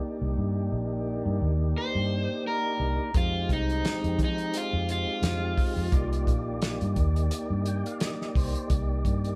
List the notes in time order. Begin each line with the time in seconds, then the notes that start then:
Already playing: A#3 D4 D#4 G4
0.21 C2
0.37 G2
0.72 A#1
1.25 G2
1.41 D#2
1.78 C5
1.95 G2
2.47 A#4
2.80 C2
3.14 F2 G#3 C4 D#4 F4 G4, kick, closed hi-hat
3.49 C2 D#4, kick, closed hi-hat
3.69 closed hi-hat
3.85 snare, closed hi-hat
4.04 F2, closed hi-hat
4.19 F3, kick, closed hi-hat
4.24 D#4
4.38 closed hi-hat
4.54 F4, closed hi-hat
4.73 F2
4.89 F4, closed hi-hat
5.22 F2, snare, closed hi-hat
5.58 kick, open hi-hat
5.76 F2
5.91 C2 A#3 D#4 G4 D5, kick, closed hi-hat
6.13 closed hi-hat
6.27 A#1, kick, closed hi-hat
6.62 snare, closed hi-hat
6.81 G2, closed hi-hat
6.96 D#2, kick, closed hi-hat
7.16 closed hi-hat
7.31 closed hi-hat
7.50 G2
7.66 G5, closed hi-hat
7.86 F5, closed hi-hat
8.00 D#5, snare, closed hi-hat
8.22 snare
8.35 C2 C5, kick, open hi-hat
8.55 closed hi-hat
8.70 C2, kick, closed hi-hat
9.05 G2, kick, closed hi-hat
9.24 closed hi-hat